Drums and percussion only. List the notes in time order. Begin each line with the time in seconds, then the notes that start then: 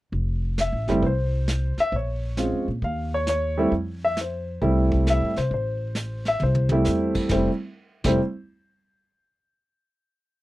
0.13 brush sweep, kick
0.58 snare, hi-hat pedal
0.88 snare
1.03 brush sweep, kick
1.48 snare, hi-hat pedal
1.78 snare
1.92 brush sweep, kick
2.37 snare, hi-hat pedal
2.82 brush sweep, kick
3.27 snare, hi-hat pedal
3.72 brush sweep, kick
4.17 snare, hi-hat pedal
4.62 brush sweep, kick
4.92 kick
5.07 snare, hi-hat pedal
5.36 snare
5.50 brush sweep, kick
5.95 snare, hi-hat pedal
6.25 snare
6.40 mid tom
6.55 mid tom
6.69 mid tom
6.85 snare, hi-hat pedal
7.14 kick, crash
7.29 kick, snare
8.04 kick, snare, crash